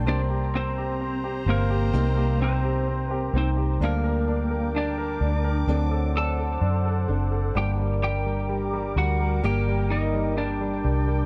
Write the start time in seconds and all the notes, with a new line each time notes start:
0.05 C2 C3 G3 A#3 C4 D4 G4 C5 D5 A#5
0.30 G4
0.54 C4 C5
0.78 G4
1.01 C4
1.24 G4
1.46 G1 A#3 C4
1.50 A#4
1.70 G4
1.93 C2 C3 G3 A#3 C4 D#4 G4
2.17 G4
2.40 C4 C5
2.64 G4
2.88 C4
3.11 G4 A#4
3.33 C2 A#3 C4 D#4 G4
3.38 C5
3.57 G4
3.80 D2 D3 G3 A#3 D4 G4 A#4 G5 D6
3.85 A#4
4.04 A#4
4.28 D4
4.51 A#4
4.74 D4 D5
4.98 A#4
5.21 D2 D4
5.44 A#4
5.67 D2 D3 F#3 C4 D4 A4 C5 F#5
5.91 A4
6.14 D4 A4 A5
6.38 A4
6.61 F#2 D4
6.85 A4
7.08 F#1 C4 D4 A4
7.32 A4
7.54 G1 G2 D3 G3 A#3 D4 G4 A#4 G5 A#5 D6
7.79 G3
8.02 G3 G4 G5
8.26 G3
8.49 G3
8.73 G3
8.96 D2 G3 F#4 F#5
9.20 G3
9.42 G1 G2 G3 A#3 G4 G5
9.67 G3
9.91 G3 D#4 D#5
10.14 G3
10.37 G3 D4 D5
10.61 G3
10.84 C2 G3
11.08 G3